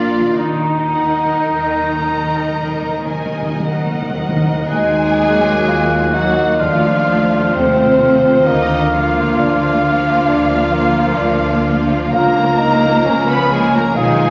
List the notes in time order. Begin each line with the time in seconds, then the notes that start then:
Already playing: A#1 A#2 D4 F4 A#4 D5 F5
0.19 D#3
0.24 D#4
0.28 F#4
0.32 A#4
0.37 D#2 D#3 D#4
0.46 D#3
0.54 D#3
0.63 D#3
0.88 A#4 D#5 F#5
1.06 D#3
1.25 D#3
1.33 D#3
1.41 D#3
1.46 D#2 D#3 A#5
1.59 D#3
1.66 D#3
1.84 D#3
1.92 D#3
1.98 D#3 A#4 D#5
2.08 D#3
2.17 D#3
2.26 D#3
2.33 D#3
2.41 D#3
2.49 D#2 D#3
2.58 D#3
2.65 D#3
2.75 D#3
2.82 D#3
2.91 D#3
2.99 D#3
3.07 D#3 A#4 D#5 G#5
3.17 D#3
3.25 D#3
3.33 D#3
3.42 D#3
3.49 D#3
3.60 D#2 D#3 F#5
3.68 D#3
3.78 D#3
3.85 D#3
3.93 D#3
4.02 D#3
4.10 D#3
4.16 D#3 A#4 D#5
4.29 D#3
4.36 D#3
4.45 D#3
4.54 D#3
4.70 D#2 D#3 G#3 A#3 D#4 F#4 G#4 G#5 F#6
5.05 A#3
5.19 F#3 A#3
5.37 G#3
5.68 D#2 F4
5.99 D#4
6.11 F#3 A#3 D#4 F#4
6.15 F#5
6.31 A#3
6.57 D#2 D#3 F3 A3 D4 F4 F5 F6
6.92 A3
7.07 F3 A3
7.25 G3
7.53 D#2 C3 A3 C4 C5
7.86 C4
8.00 F3 A3
8.16 A3
8.45 D2 D3 D#3 A#3 D#4 D#5
8.77 D4
8.92 F3 A#3 F4 F5
9.08 B3
9.38 D2 D4
9.68 A#3
9.83 F3 A#3 F4
9.98 D4
10.28 D2 D3 D4
10.57 A#3
10.73 F3 A#3
10.87 G#3
11.17 D2 D4
11.48 A#3
11.66 F3 A#3
11.81 D4
12.13 C#2 C#3 F3 A#3 F4 A#4 A#5 F6
12.44 C#4
12.59 F3 A#3 D#4
12.74 B3
13.05 C#2 C#4
13.28 B3 B4 B5
13.36 F3
13.51 F3 G#3 A#3 G#4 G#5
13.67 C#4
13.73 A#3 A#4 A#5
13.95 B1 B2 D#3 G#3 B3 D#4 F4 G#4 G#5 D#6